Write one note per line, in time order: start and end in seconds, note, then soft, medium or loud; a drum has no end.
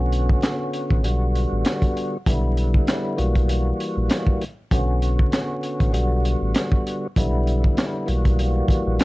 0.00 0.35 B1 loud
0.00 1.02 D3 medium
0.00 1.03 B3 medium
0.00 1.05 C#4 medium
0.00 1.03 F#4 loud
0.12 closed hi-hat medium
0.29 kick medium
0.42 snare loud
0.42 clap medium
0.42 closed hi-hat medium
0.73 closed hi-hat medium
0.91 1.06 A1 medium
0.91 kick medium
1.03 1.46 B1 loud
1.03 2.17 D3 medium
1.03 2.17 G3 medium
1.03 2.18 B3 medium
1.03 2.18 F#4 loud
1.03 closed hi-hat medium
1.35 closed hi-hat medium
1.52 1.64 A1 medium
1.65 snare loud
1.65 clap medium
1.65 closed hi-hat loud
1.82 kick medium
1.82 closed hi-hat medium
1.97 closed hi-hat medium
2.26 2.80 B1 loud
2.26 3.18 D3 medium
2.26 3.15 G3 medium
2.26 3.19 B3 medium
2.26 3.19 E4 loud
2.26 kick loud
2.26 closed hi-hat loud
2.57 closed hi-hat medium
2.74 kick medium
2.87 snare loud
2.87 clap medium
2.87 closed hi-hat medium
3.16 3.72 B1 medium
3.16 4.44 E3 medium
3.16 4.44 G3 medium
3.16 4.45 A#3 medium
3.16 4.45 F#4 loud
3.16 closed hi-hat medium
3.35 kick medium
3.35 closed hi-hat medium
3.49 closed hi-hat medium
3.80 closed hi-hat medium
3.97 4.09 A#1 medium
4.10 snare loud
4.10 clap medium
4.10 closed hi-hat loud
4.27 kick medium
4.41 closed hi-hat medium
4.71 5.25 B1 loud
4.71 5.92 D3 medium
4.71 5.92 B3 medium
4.71 5.94 C#4 medium
4.71 5.93 F#4 loud
4.71 kick loud
4.71 closed hi-hat loud
5.02 closed hi-hat medium
5.19 kick medium
5.32 snare loud
5.32 clap medium
5.32 closed hi-hat medium
5.63 closed hi-hat medium
5.80 5.95 A1 medium
5.80 kick medium
5.80 closed hi-hat medium
5.93 6.35 B1 loud
5.93 7.07 D3 loud
5.93 7.07 G3 medium
5.93 7.07 B3 medium
5.93 7.07 F#4 loud
5.93 closed hi-hat medium
6.25 closed hi-hat medium
6.41 6.53 A1 medium
6.54 snare loud
6.54 clap medium
6.54 closed hi-hat loud
6.72 kick medium
6.87 closed hi-hat medium
7.16 7.70 B1 loud
7.16 8.08 D3 medium
7.16 8.05 G3 medium
7.16 8.08 B3 medium
7.16 8.09 E4 loud
7.16 kick loud
7.16 closed hi-hat loud
7.47 closed hi-hat medium
7.64 kick medium
7.77 snare loud
7.77 clap medium
7.77 closed hi-hat medium
8.06 8.62 B1 loud
8.06 9.04 E3 medium
8.06 9.04 G3 medium
8.06 9.04 A#3 medium
8.06 9.04 F#4 loud
8.06 closed hi-hat medium
8.25 kick medium
8.25 closed hi-hat medium
8.39 closed hi-hat loud
8.68 kick loud
8.68 closed hi-hat medium
8.87 8.98 A#1 medium
8.99 snare loud
8.99 closed hi-hat loud